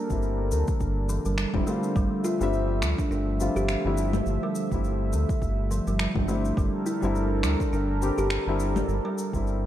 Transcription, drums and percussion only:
0.10 kick, shaker
0.22 shaker
0.51 shaker
0.68 kick, shaker
0.80 kick, shaker
1.09 shaker
1.25 shaker
1.38 finger snap, shaker
1.54 kick, low conga
1.67 shaker
1.83 shaker
1.96 kick, shaker
2.24 shaker
2.41 shaker
2.53 shaker
2.82 finger snap, shaker
2.98 kick, shaker
3.12 shaker
3.40 shaker
3.56 shaker
3.69 finger snap, shaker
3.97 shaker
4.13 low conga, shaker
4.26 shaker
4.55 shaker
4.71 kick, shaker
4.84 shaker
5.13 shaker
5.29 kick, shaker
5.42 kick, shaker
5.71 shaker
5.87 shaker
5.99 finger snap, shaker
6.16 kick, low conga
6.28 shaker
6.45 shaker
6.57 kick, shaker
6.86 shaker
7.03 shaker
7.15 shaker
7.43 finger snap, shaker
7.60 kick, shaker
7.73 shaker
8.02 shaker
8.18 shaker
8.30 finger snap, shaker
8.60 shaker
8.76 low conga, shaker
8.89 shaker
9.18 shaker
9.33 kick, shaker
9.47 shaker

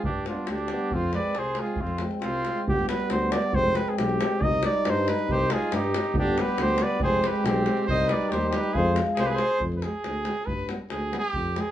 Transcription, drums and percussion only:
0.04 davul low
0.26 davul high
0.47 davul high
0.58 davul high
0.68 davul high
0.79 davul high
0.91 davul low
1.13 davul high
1.35 davul high
1.45 davul high
1.55 davul high
1.66 davul high
1.76 davul low
1.87 davul high
1.98 davul high
2.11 davul high
2.22 davul high
2.34 davul high
2.45 davul high
2.58 davul high
2.68 davul low
2.79 davul high
2.89 davul high
3.00 davul high
3.10 davul high
3.22 davul high
3.32 davul high
3.42 davul high
3.53 davul low
3.75 davul high
3.88 davul high
3.98 davul high
4.09 davul high
4.21 davul high
4.32 davul high
4.41 davul low
4.53 davul high
4.63 davul high
4.74 davul high
4.85 davul high
5.08 davul high
5.19 davul high
5.29 davul low
5.39 davul high
5.50 davul high
5.62 davul high
5.72 davul high
5.84 davul high
5.94 davul high
6.04 davul high
6.14 davul low
6.27 davul high
6.38 davul high
6.48 davul high
6.58 davul high
6.68 davul high
6.78 davul high
6.91 davul high
7.00 davul low
7.12 davul high
7.24 davul high
7.36 davul high
7.46 davul high
7.57 davul high
7.66 davul high
7.77 davul high
7.88 davul low
7.99 davul high
8.09 davul high
8.21 davul high
8.32 davul high
8.41 davul high
8.53 davul high
8.64 davul high
8.75 davul low
8.85 davul high
8.96 davul high
9.07 davul high
9.17 davul high
9.28 davul high
9.38 davul high
9.50 davul high
9.60 davul low
9.72 davul high
9.82 davul high
10.04 davul high
10.25 davul high
10.37 davul high
10.47 davul low
10.59 davul high
10.69 davul high
10.90 davul high
11.13 davul high
11.23 davul high
11.33 davul low
11.46 davul high
11.56 davul high

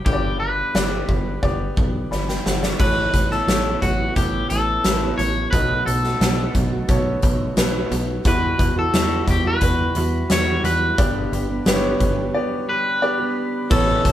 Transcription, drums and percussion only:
0.06 kick
0.75 snare
1.09 kick
1.43 kick
1.77 kick
2.12 snare
2.29 snare
2.46 snare
2.63 snare
2.80 kick, crash
3.14 kick, closed hi-hat
3.31 snare
3.48 snare, closed hi-hat
3.82 kick, closed hi-hat
4.16 kick, closed hi-hat
4.50 closed hi-hat
4.84 snare, closed hi-hat
5.19 closed hi-hat
5.53 kick, closed hi-hat
5.87 closed hi-hat
6.04 snare
6.21 snare, closed hi-hat
6.55 kick, closed hi-hat
6.88 kick, closed hi-hat
7.22 kick, closed hi-hat
7.57 snare, closed hi-hat
7.91 closed hi-hat
8.25 kick, closed hi-hat
8.59 kick, closed hi-hat
8.94 snare, closed hi-hat
9.27 kick, closed hi-hat
9.61 kick, closed hi-hat
9.95 closed hi-hat
10.30 snare, closed hi-hat
10.64 closed hi-hat
10.98 kick, closed hi-hat
11.33 closed hi-hat
11.66 snare, closed hi-hat
12.00 kick, closed hi-hat
13.71 kick, crash
14.05 kick, closed hi-hat

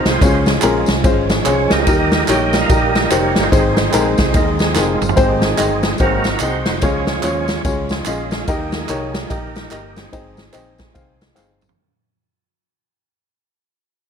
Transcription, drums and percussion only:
0.05 snare, ride, tambourine
0.21 kick, ride, tambourine
0.46 snare, ride, tambourine
0.62 clap, ride, tambourine
0.86 snare, ride, tambourine
1.04 kick, ride, tambourine
1.30 snare, ride, tambourine
1.45 clap, ride, tambourine
1.70 snare, ride, tambourine
1.87 kick, ride, tambourine
2.12 snare, ride, tambourine
2.28 clap, ride, tambourine
2.53 snare, ride, tambourine
2.69 kick, ride, tambourine
2.95 snare, ride, tambourine
3.10 clap, ride, tambourine
3.36 snare, ride, tambourine
3.52 kick, ride, tambourine
3.77 snare, ride, tambourine
3.93 clap, ride, tambourine
4.18 kick, snare, ride, tambourine
4.34 kick, ride, tambourine
4.59 snare, ride, tambourine
4.75 snare, clap, tambourine
5.01 mid tom, tambourine
5.09 floor tom
5.17 kick, ride, tambourine
5.42 snare, ride, tambourine
5.58 clap, ride, tambourine
5.83 snare, ride, tambourine
5.98 kick, ride, tambourine
6.24 snare, ride, tambourine
6.39 clap, ride, tambourine
6.66 snare, ride, tambourine
6.81 kick, ride, tambourine
7.07 snare, ride, tambourine
7.23 clap, ride, tambourine
7.48 snare, ride, tambourine
7.65 kick, ride, tambourine
7.89 snare, ride, tambourine
8.05 clap, ride, tambourine
8.31 snare, ride, tambourine
8.48 kick, ride, tambourine
8.72 snare, ride, tambourine
8.89 clap, ride, tambourine
9.14 snare, ride, tambourine
9.30 kick, ride, tambourine
9.55 snare, ride, tambourine
9.71 clap, ride, tambourine
9.96 snare, ride, tambourine
10.13 kick, ride, tambourine
10.37 snare, ride, tambourine
10.53 clap, ride, tambourine
10.78 kick, snare, ride, tambourine
10.95 kick, ride, tambourine
11.21 snare, ride, tambourine
11.37 snare, clap, tambourine
11.61 mid tom, tambourine
11.69 floor tom

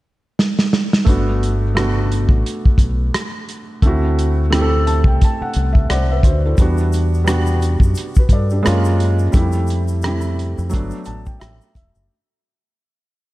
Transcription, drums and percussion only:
0.39 snare
0.59 snare
0.73 snare
0.93 snare
1.07 kick, closed hi-hat
1.43 closed hi-hat
1.77 cross-stick, closed hi-hat
2.12 closed hi-hat
2.29 kick
2.46 closed hi-hat
2.66 kick
2.78 kick, closed hi-hat
3.14 cross-stick, closed hi-hat
3.49 closed hi-hat
3.82 kick, closed hi-hat
4.19 closed hi-hat
4.53 cross-stick, closed hi-hat
4.87 closed hi-hat
5.04 kick
5.21 kick, closed hi-hat
5.54 closed hi-hat
5.75 kick
5.90 cross-stick, closed hi-hat
6.23 kick, closed hi-hat
6.58 kick, closed hi-hat, shaker
6.78 shaker
6.92 closed hi-hat, shaker
7.14 shaker
7.27 cross-stick, closed hi-hat, shaker
7.46 shaker
7.62 closed hi-hat, shaker
7.80 kick, shaker
7.95 closed hi-hat, shaker
8.15 kick, shaker
8.29 kick, closed hi-hat
8.50 shaker
8.66 cross-stick, closed hi-hat, shaker
8.85 shaker
9.00 closed hi-hat
9.19 shaker
9.33 kick, closed hi-hat, shaker
9.52 shaker
9.67 closed hi-hat, shaker
9.88 shaker
10.02 cross-stick, closed hi-hat, shaker
10.21 shaker
10.39 closed hi-hat
10.58 shaker
10.70 kick, closed hi-hat, shaker
10.91 shaker
11.05 closed hi-hat, shaker
11.26 kick, shaker
11.41 cross-stick, closed hi-hat, shaker
11.61 shaker
11.75 kick, closed hi-hat, shaker
11.95 shaker

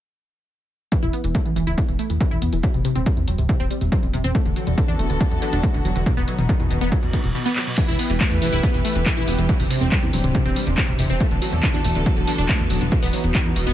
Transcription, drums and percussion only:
0.92 kick, closed hi-hat
1.03 closed hi-hat
1.13 closed hi-hat
1.24 closed hi-hat
1.35 kick, closed hi-hat
1.45 closed hi-hat
1.56 closed hi-hat
1.67 closed hi-hat
1.78 kick, closed hi-hat
1.88 closed hi-hat
1.99 closed hi-hat
2.10 closed hi-hat
2.21 kick, closed hi-hat
2.31 closed hi-hat
2.42 closed hi-hat
2.53 closed hi-hat
2.63 kick, closed hi-hat
2.74 closed hi-hat
2.85 closed hi-hat
2.96 closed hi-hat
3.06 kick, closed hi-hat
3.17 closed hi-hat
3.28 closed hi-hat
3.38 closed hi-hat
3.49 kick, closed hi-hat
3.60 closed hi-hat
3.71 closed hi-hat
3.81 closed hi-hat
3.92 kick, closed hi-hat
4.03 closed hi-hat
4.13 closed hi-hat
4.24 closed hi-hat
4.35 kick, closed hi-hat
4.46 closed hi-hat
4.56 closed hi-hat
4.67 closed hi-hat
4.78 kick, closed hi-hat
4.88 closed hi-hat
4.99 closed hi-hat
5.10 closed hi-hat
5.21 kick, closed hi-hat
5.31 closed hi-hat
5.42 closed hi-hat
5.53 closed hi-hat
5.63 kick, closed hi-hat
5.74 closed hi-hat
5.85 closed hi-hat
5.96 closed hi-hat
6.06 kick, closed hi-hat
6.17 closed hi-hat
6.28 closed hi-hat
6.39 closed hi-hat
6.49 kick, closed hi-hat
6.60 closed hi-hat
6.71 closed hi-hat
6.81 closed hi-hat
6.92 kick, closed hi-hat
7.03 closed hi-hat
7.13 kick, closed hi-hat
7.24 closed hi-hat
7.56 clap
7.78 kick, closed hi-hat, crash
7.88 closed hi-hat
7.99 open hi-hat
8.10 closed hi-hat
8.21 kick, clap, closed hi-hat
8.31 closed hi-hat
8.42 open hi-hat
8.53 closed hi-hat
8.63 kick, closed hi-hat
8.74 closed hi-hat
8.85 open hi-hat
8.96 closed hi-hat
9.06 kick, clap, closed hi-hat
9.17 closed hi-hat
9.28 open hi-hat
9.38 closed hi-hat
9.49 kick, closed hi-hat
9.60 open hi-hat
9.70 open hi-hat
9.81 closed hi-hat
9.92 kick, clap, closed hi-hat
10.03 closed hi-hat
10.13 open hi-hat
10.24 closed hi-hat
10.35 kick, closed hi-hat
10.45 closed hi-hat
10.56 open hi-hat
10.67 closed hi-hat
10.78 kick, clap, closed hi-hat
10.88 closed hi-hat
10.99 open hi-hat
11.10 closed hi-hat
11.20 kick, closed hi-hat
11.31 closed hi-hat
11.42 open hi-hat
11.53 closed hi-hat
11.63 kick, clap, closed hi-hat
11.74 closed hi-hat
11.85 open hi-hat
11.95 closed hi-hat
12.06 kick, closed hi-hat
12.17 closed hi-hat
12.27 open hi-hat
12.38 closed hi-hat
12.49 kick, clap, closed hi-hat
12.60 closed hi-hat
12.70 open hi-hat
12.81 closed hi-hat
12.92 kick, closed hi-hat
13.03 open hi-hat
13.13 open hi-hat
13.24 closed hi-hat
13.35 kick, clap, closed hi-hat
13.45 closed hi-hat
13.56 open hi-hat
13.67 closed hi-hat

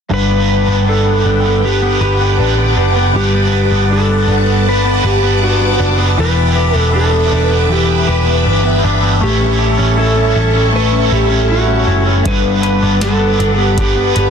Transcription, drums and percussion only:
12.25 kick, closed hi-hat
12.63 closed hi-hat
13.01 snare, closed hi-hat
13.40 closed hi-hat
13.78 kick, closed hi-hat
14.16 closed hi-hat

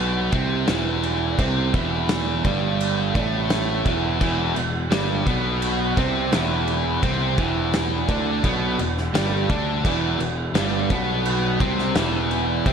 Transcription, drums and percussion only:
0.32 kick, crash
0.67 snare, crash
1.03 crash
1.39 kick, crash
1.74 kick, crash
2.09 snare, crash
2.45 kick, crash
2.81 crash
3.15 kick, crash
3.50 snare, crash
3.86 kick, crash
4.21 kick, crash
4.56 crash
4.92 snare, crash
5.27 kick, crash
5.62 crash
5.97 kick, crash
6.32 snare, crash
6.68 crash
7.03 kick, crash
7.38 kick, crash
7.73 snare, crash
8.09 kick, crash
8.44 kick, crash
8.79 crash
8.98 snare
9.15 snare, crash
9.50 kick, crash
9.85 kick, crash
10.20 crash
10.55 snare, crash
10.90 kick, crash
11.26 crash
11.60 kick, crash
11.79 snare
11.95 snare, crash
12.31 crash
12.66 kick, crash

